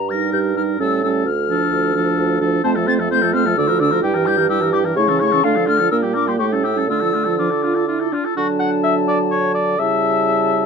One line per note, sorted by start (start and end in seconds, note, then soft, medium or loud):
0.00 0.28 G2 medium
0.00 0.11 A#5 medium
0.10 0.55 G3 soft
0.10 0.55 D#4 soft
0.10 0.55 A#4 soft
0.10 0.32 A#6 medium
0.33 0.74 G2 medium
0.33 0.39 G6 medium
0.56 0.79 G3 soft
0.56 0.78 D#4 soft
0.56 0.79 A#4 soft
0.56 0.62 F6 medium
0.79 1.20 A2 medium
0.79 1.02 G3 soft
0.79 1.02 C#4 soft
0.79 1.03 A4 soft
0.79 1.02 E6 medium
1.03 1.26 G3 soft
1.03 1.26 C#4 soft
1.03 1.26 A4 soft
1.03 1.09 E6 medium
1.25 1.66 D2 medium
1.25 2.39 F6 medium
1.49 1.94 F3 soft
1.49 1.94 D4 soft
1.49 1.95 A4 soft
1.71 2.12 D2 medium
1.94 2.40 F3 soft
1.94 2.40 D4 soft
1.94 2.40 A4 medium
2.17 2.59 D2 medium
2.41 2.64 F3 soft
2.41 2.63 D4 soft
2.41 2.63 A4 soft
2.64 3.53 F2 medium
2.64 2.78 A3 medium
2.64 2.77 C4 medium
2.64 2.77 C5 medium
2.64 2.70 A5 medium
2.75 2.90 F3 soft
2.75 2.89 A3 soft
2.75 2.89 A4 soft
2.87 3.01 A3 soft
2.87 3.00 C4 medium
2.87 3.01 C5 medium
2.87 2.94 A6 medium
2.99 3.11 F3 soft
2.99 3.09 A3 soft
2.99 3.10 A4 soft
3.10 3.24 A3 medium
3.10 3.23 C4 medium
3.10 3.23 C5 medium
3.10 3.33 G6 medium
3.22 3.36 F3 soft
3.22 3.35 A3 soft
3.22 3.35 A4 soft
3.33 3.47 A3 medium
3.33 3.47 C4 medium
3.33 3.47 C5 medium
3.33 3.59 F6 medium
3.46 3.57 F3 soft
3.46 3.56 A3 medium
3.46 3.57 A4 soft
3.57 4.05 D2 medium
3.57 3.71 D3 medium
3.57 3.69 D4 soft
3.57 3.69 D5 medium
3.57 3.80 E6 medium
3.68 3.82 F3 soft
3.68 3.82 F4 medium
3.68 3.81 A#4 soft
3.79 3.94 D3 medium
3.79 3.94 D4 medium
3.79 3.93 D5 medium
3.79 4.03 E6 medium
3.91 4.04 F3 soft
3.91 4.03 F4 medium
3.91 4.02 A#4 soft
4.02 4.99 G2 medium
4.02 4.17 G3 medium
4.02 4.17 E4 medium
4.02 4.16 G4 medium
4.02 4.27 G5 medium
4.14 4.29 E3 soft
4.14 4.28 G4 soft
4.14 4.29 A#4 soft
4.26 4.39 G3 medium
4.26 4.39 E4 medium
4.26 4.39 G4 soft
4.26 4.49 G6 medium
4.37 4.49 E3 soft
4.37 4.49 G4 soft
4.37 4.48 A#4 soft
4.49 4.63 G3 medium
4.49 4.63 E4 medium
4.49 4.63 G4 medium
4.49 4.72 E6 medium
4.61 4.74 E3 soft
4.61 4.75 G4 soft
4.61 4.75 A#4 soft
4.72 4.86 G3 medium
4.72 4.86 E4 soft
4.72 4.86 G4 medium
4.72 4.78 D6 medium
4.84 4.96 E3 soft
4.84 4.97 G4 soft
4.84 4.96 A#4 soft
4.96 5.44 C#3 medium
4.96 5.10 A3 medium
4.96 5.11 E4 soft
4.96 5.10 C#5 medium
4.96 5.18 C#6 medium
5.08 5.22 E3 soft
5.08 5.23 C#4 soft
5.08 5.21 A4 soft
5.19 5.34 A3 medium
5.19 5.35 E4 medium
5.19 5.33 C#5 medium
5.19 5.45 C#6 medium
5.32 5.43 E3 soft
5.32 5.43 C#4 soft
5.32 5.43 A4 soft
5.43 5.91 D3 medium
5.43 5.58 A3 medium
5.43 5.58 D4 medium
5.43 5.57 F4 medium
5.43 5.67 F5 medium
5.55 5.70 F3 soft
5.55 5.69 F4 soft
5.55 5.67 A4 soft
5.66 5.81 A3 soft
5.66 5.82 D4 soft
5.66 5.80 F4 soft
5.66 5.90 F6 medium
5.78 5.91 F3 soft
5.78 5.91 F4 soft
5.78 5.90 A4 soft
5.91 6.41 A#2 medium
5.91 6.05 A#3 soft
5.91 6.04 D4 soft
5.91 6.04 A#4 soft
5.91 5.97 E6 medium
6.02 6.17 G3 soft
6.02 6.17 A#3 soft
6.02 6.15 G4 soft
6.14 6.30 A#3 soft
6.14 6.29 D4 soft
6.14 6.29 A#4 soft
6.14 6.27 D6 medium
6.27 6.39 G3 soft
6.27 6.40 A#3 soft
6.27 6.38 G4 soft
6.27 6.33 C6 medium
6.38 6.90 A2 medium
6.38 6.55 A3 soft
6.38 6.53 E4 soft
6.38 6.54 G4 soft
6.38 6.45 C#6 medium
6.52 6.66 G3 soft
6.52 6.66 C#4 soft
6.52 6.65 A4 soft
6.63 6.79 A3 soft
6.63 6.78 E4 soft
6.63 6.79 G4 soft
6.63 6.88 E6 medium
6.76 6.89 G3 soft
6.76 6.88 C#4 soft
6.76 6.89 A4 soft
6.89 8.13 D3 soft
6.89 7.04 A3 soft
6.89 7.03 D4 soft
6.89 7.02 F4 soft
6.89 7.41 E6 medium
7.01 7.16 F3 soft
7.01 7.16 F4 soft
7.01 7.15 A4 soft
7.14 7.28 A3 soft
7.14 7.28 D4 soft
7.14 7.26 F4 soft
7.25 7.39 F3 soft
7.25 7.38 F4 soft
7.25 7.37 A4 soft
7.38 7.50 F3 medium
7.38 7.52 D4 soft
7.38 7.52 F4 soft
7.38 8.13 D6 medium
7.50 7.65 F4 soft
7.50 7.64 A4 soft
7.63 7.76 D4 soft
7.63 7.77 F4 soft
7.63 7.87 F4 medium
7.75 7.87 F4 soft
7.75 7.87 A4 soft
7.88 8.02 D4 soft
7.88 8.12 E4 medium
7.88 8.01 F4 soft
8.00 8.14 F4 soft
8.00 8.14 A4 soft
8.12 8.26 D4 soft
8.12 8.24 D4 medium
8.12 8.26 F4 soft
8.24 8.36 F4 soft
8.24 8.36 A4 soft
8.36 9.80 D3 soft
8.36 9.75 F#3 soft
8.36 9.62 D4 medium
8.36 8.48 F#4 medium
8.36 9.75 A5 medium
8.59 8.70 F#5 medium
8.83 8.94 E5 medium
9.08 9.19 D5 medium
9.31 9.54 C#5 medium
9.55 9.81 D5 medium
9.79 10.66 C#3 soft
9.79 10.66 G3 soft
9.79 10.66 E4 medium
9.79 10.66 E5 medium
9.79 10.66 A5 medium